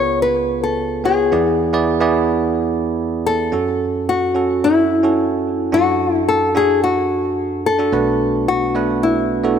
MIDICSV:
0, 0, Header, 1, 3, 480
1, 0, Start_track
1, 0, Key_signature, 3, "minor"
1, 0, Tempo, 550459
1, 1152, Time_signature, 4, 2, 24, 8
1, 8364, End_track
2, 0, Start_track
2, 0, Title_t, "Nylon-string guitar"
2, 0, Program_c, 0, 24
2, 0, Note_on_c, 0, 73, 105
2, 190, Note_off_c, 0, 73, 0
2, 193, Note_on_c, 0, 71, 103
2, 550, Note_off_c, 0, 71, 0
2, 554, Note_on_c, 0, 69, 90
2, 888, Note_off_c, 0, 69, 0
2, 919, Note_on_c, 0, 68, 81
2, 2139, Note_off_c, 0, 68, 0
2, 2139, Note_on_c, 0, 66, 81
2, 2800, Note_off_c, 0, 66, 0
2, 2847, Note_on_c, 0, 69, 115
2, 3563, Note_off_c, 0, 69, 0
2, 3566, Note_on_c, 0, 66, 98
2, 4047, Note_on_c, 0, 64, 94
2, 4053, Note_off_c, 0, 66, 0
2, 5005, Note_on_c, 0, 66, 104
2, 5028, Note_off_c, 0, 64, 0
2, 5445, Note_off_c, 0, 66, 0
2, 5481, Note_on_c, 0, 69, 106
2, 5700, Note_off_c, 0, 69, 0
2, 5727, Note_on_c, 0, 68, 98
2, 5957, Note_off_c, 0, 68, 0
2, 5961, Note_on_c, 0, 66, 93
2, 6679, Note_off_c, 0, 66, 0
2, 6683, Note_on_c, 0, 69, 107
2, 7394, Note_off_c, 0, 69, 0
2, 7398, Note_on_c, 0, 66, 97
2, 7876, Note_on_c, 0, 64, 92
2, 7889, Note_off_c, 0, 66, 0
2, 8364, Note_off_c, 0, 64, 0
2, 8364, End_track
3, 0, Start_track
3, 0, Title_t, "Tine electric piano"
3, 0, Program_c, 1, 4
3, 0, Control_c, 1, 64, 127
3, 0, Note_on_c, 1, 37, 81
3, 0, Note_on_c, 1, 49, 80
3, 0, Note_on_c, 1, 59, 74
3, 0, Note_on_c, 1, 65, 68
3, 0, Note_on_c, 1, 68, 67
3, 0, Note_on_c, 1, 70, 65
3, 0, Note_on_c, 1, 71, 80
3, 0, Note_on_c, 1, 73, 102
3, 299, Note_off_c, 1, 59, 0
3, 300, Note_off_c, 1, 65, 0
3, 303, Note_off_c, 1, 68, 0
3, 333, Note_off_c, 1, 71, 0
3, 908, Note_on_c, 1, 59, 73
3, 913, Note_on_c, 1, 65, 67
3, 916, Note_on_c, 1, 68, 68
3, 920, Note_off_c, 1, 73, 0
3, 920, Note_on_c, 1, 73, 81
3, 1087, Note_off_c, 1, 59, 0
3, 1090, Note_off_c, 1, 65, 0
3, 1091, Note_off_c, 1, 68, 0
3, 1093, Note_off_c, 1, 73, 0
3, 1118, Note_off_c, 1, 37, 0
3, 1118, Note_off_c, 1, 49, 0
3, 1149, Note_on_c, 1, 59, 75
3, 1153, Note_on_c, 1, 64, 66
3, 1154, Note_on_c, 1, 40, 65
3, 1154, Note_on_c, 1, 52, 67
3, 1157, Note_on_c, 1, 68, 68
3, 1159, Note_on_c, 1, 74, 85
3, 1164, Control_c, 1, 64, 0
3, 1169, Note_off_c, 1, 70, 0
3, 1333, Control_c, 1, 64, 127
3, 1417, Note_off_c, 1, 59, 0
3, 1418, Note_off_c, 1, 64, 0
3, 1420, Note_off_c, 1, 68, 0
3, 1422, Note_off_c, 1, 74, 0
3, 1508, Note_on_c, 1, 59, 82
3, 1511, Note_on_c, 1, 64, 80
3, 1515, Note_on_c, 1, 68, 81
3, 1517, Note_on_c, 1, 74, 97
3, 1687, Note_off_c, 1, 59, 0
3, 1689, Note_off_c, 1, 64, 0
3, 1691, Note_off_c, 1, 68, 0
3, 1692, Note_off_c, 1, 74, 0
3, 1745, Note_on_c, 1, 59, 88
3, 1750, Note_on_c, 1, 64, 81
3, 1754, Note_on_c, 1, 68, 82
3, 1758, Note_on_c, 1, 74, 90
3, 2458, Note_off_c, 1, 59, 0
3, 2460, Note_off_c, 1, 64, 0
3, 2462, Note_off_c, 1, 68, 0
3, 2464, Note_off_c, 1, 74, 0
3, 3038, Note_off_c, 1, 40, 0
3, 3038, Note_off_c, 1, 52, 0
3, 3070, Note_on_c, 1, 61, 75
3, 3075, Note_on_c, 1, 66, 65
3, 3077, Note_on_c, 1, 42, 65
3, 3082, Note_on_c, 1, 69, 81
3, 3083, Control_c, 1, 64, 0
3, 3252, Control_c, 1, 64, 127
3, 3603, Note_off_c, 1, 61, 0
3, 3605, Note_off_c, 1, 66, 0
3, 3609, Note_off_c, 1, 69, 0
3, 3788, Note_on_c, 1, 61, 75
3, 3795, Note_on_c, 1, 66, 71
3, 3800, Note_on_c, 1, 69, 80
3, 4233, Note_off_c, 1, 61, 0
3, 4237, Note_off_c, 1, 66, 0
3, 4239, Note_off_c, 1, 69, 0
3, 4389, Note_on_c, 1, 61, 76
3, 4392, Note_on_c, 1, 66, 69
3, 4399, Note_on_c, 1, 69, 77
3, 4834, Note_off_c, 1, 61, 0
3, 4835, Note_off_c, 1, 66, 0
3, 4839, Note_off_c, 1, 69, 0
3, 4960, Note_off_c, 1, 42, 0
3, 4991, Note_on_c, 1, 62, 80
3, 4995, Note_on_c, 1, 66, 67
3, 4996, Note_on_c, 1, 42, 70
3, 5000, Note_on_c, 1, 69, 79
3, 5005, Control_c, 1, 64, 0
3, 5155, Control_c, 1, 64, 127
3, 5523, Note_off_c, 1, 62, 0
3, 5525, Note_off_c, 1, 66, 0
3, 5528, Note_off_c, 1, 69, 0
3, 5710, Note_on_c, 1, 62, 77
3, 5713, Note_on_c, 1, 66, 69
3, 5718, Note_on_c, 1, 69, 87
3, 6420, Note_off_c, 1, 62, 0
3, 6422, Note_off_c, 1, 66, 0
3, 6424, Note_off_c, 1, 69, 0
3, 6789, Note_on_c, 1, 62, 77
3, 6796, Note_on_c, 1, 66, 65
3, 6798, Note_on_c, 1, 69, 81
3, 6879, Note_off_c, 1, 42, 0
3, 6879, Note_off_c, 1, 62, 0
3, 6883, Note_off_c, 1, 66, 0
3, 6884, Note_off_c, 1, 69, 0
3, 6909, Note_on_c, 1, 57, 79
3, 6910, Note_on_c, 1, 59, 71
3, 6912, Note_on_c, 1, 35, 67
3, 6913, Note_on_c, 1, 62, 71
3, 6914, Note_on_c, 1, 47, 67
3, 6917, Note_on_c, 1, 66, 70
3, 6919, Note_on_c, 1, 71, 86
3, 6925, Control_c, 1, 64, 0
3, 7098, Control_c, 1, 64, 127
3, 7442, Note_off_c, 1, 57, 0
3, 7443, Note_off_c, 1, 59, 0
3, 7444, Note_off_c, 1, 62, 0
3, 7446, Note_off_c, 1, 66, 0
3, 7447, Note_off_c, 1, 71, 0
3, 7628, Note_on_c, 1, 57, 79
3, 7631, Note_on_c, 1, 59, 68
3, 7635, Note_on_c, 1, 62, 71
3, 7637, Note_on_c, 1, 66, 72
3, 7638, Note_on_c, 1, 71, 89
3, 8073, Note_off_c, 1, 57, 0
3, 8075, Note_off_c, 1, 59, 0
3, 8077, Note_off_c, 1, 62, 0
3, 8078, Note_off_c, 1, 66, 0
3, 8078, Note_off_c, 1, 71, 0
3, 8228, Note_on_c, 1, 57, 77
3, 8230, Note_on_c, 1, 59, 72
3, 8232, Note_on_c, 1, 62, 70
3, 8235, Note_on_c, 1, 66, 72
3, 8238, Note_on_c, 1, 69, 83
3, 8364, Note_off_c, 1, 35, 0
3, 8364, Note_off_c, 1, 47, 0
3, 8364, Note_off_c, 1, 57, 0
3, 8364, Note_off_c, 1, 59, 0
3, 8364, Note_off_c, 1, 62, 0
3, 8364, Note_off_c, 1, 66, 0
3, 8364, Note_off_c, 1, 69, 0
3, 8364, End_track
0, 0, End_of_file